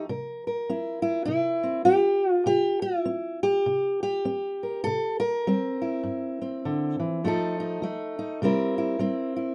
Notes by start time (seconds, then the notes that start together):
0.09 C3 A#4
0.47 A#4
0.69 C4 E4
1.02 E4
1.25 C3 E4
1.63 C4
1.85 C4 G4
2.31 F4
2.46 C3 G4
2.82 E4
3.05 C4
3.43 G4
3.66 C3
4.03 G4
4.25 C4
4.63 A#4
4.84 C3 A4
5.20 A#4
5.47 G3 C4
5.82 E4
6.03 G2
6.42 C4
6.65 D3
7.00 E3
7.24 F2 F3 A3 D#4 A4
7.60 D#4
7.82 F3 A3
8.19 D#4
8.42 C3 G3 C4 E4 A#4
8.78 E4
8.99 G3 C4
9.36 E4